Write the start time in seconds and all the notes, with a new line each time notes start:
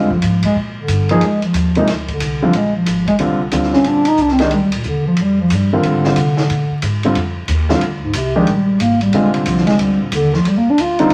Already playing: F2 G#3
0.10 F3, kick
0.22 G#2, hi-hat pedal, ride
0.43 G#3, kick, ride
0.56 A#2
0.77 D3
0.88 G2, hi-hat pedal, ride
1.09 F3 A#3 D#4 G#4, ride
1.21 F2 G#3, ride
1.42 F3, muted upright bass stroke, ride
1.53 D#2, hi-hat pedal, ride
1.75 C3 F3 G#3 A#3 D#4, ride
1.87 D2, snare, ride
2.08 D3, kick, ride
2.20 C2, hi-hat pedal, ride
2.42 D3 F3 G3 C4 F4
2.53 A#1 G#3, ride
2.76 F3
2.86 G#1, hi-hat pedal, ride
3.07 G#3, kick, ride
3.19 C2 D3 G3 C4 F4, ride
3.51 D2 D3 G3 C4 F4, hi-hat pedal, ride
3.63 snare
3.73 C#4, snare
3.84 A#1 D4, ride
4.05 D#4, ride
4.17 C2, hi-hat pedal
4.21 D4
4.28 C4, snare
4.39 D#3 G#3 D4 G4, snare, ride
4.51 D2 G3, ride
4.72 A#2, ride
4.83 D#2, hi-hat pedal
4.87 D3
5.07 F3
5.16 F2, ride
5.22 G3
5.40 F3
5.50 G2, hi-hat pedal, ride
5.55 G3
5.73 D3 D#3 G3 C4 F4
5.83 G#2, ride
5.88 D3
6.04 D3 G3 C4 F4, snare
6.16 C3, hi-hat pedal, ride
6.37 snare
6.50 A#2, ride
6.71 muted upright bass stroke
6.82 G#2, hi-hat pedal, ride
7.03 D3 G3 C4 F4, ride
7.15 F2, ride
7.48 D#2, hi-hat pedal, ride
7.69 D3 G3 C4 F4, snare
7.81 D2, ride
8.04 G#2
8.13 C2 C3, hi-hat pedal, ride
8.36 D#3 F3 G#3 D4 G4
8.47 A#1 G3, ride
8.79 G#1 A#3, hi-hat pedal, ride
9.01 G3, ride
9.12 A#1 D3 G3 G#3 C4 F4, ride
9.34 C3, ride
9.46 C2 F3, hi-hat pedal, ride
9.57 snare
9.67 G#3, snare, ride
9.78 D2 G3, ride
10.01 A#2
10.12 D#2 D3, hi-hat pedal, ride
10.34 F3, snare
10.45 F2 G3, ride
10.57 A#3
10.66 D4, muted upright bass stroke
10.78 D2 F4, hi-hat pedal, ride
10.99 D3 G3 C4 D#4 F4, ride
11.10 F2, ride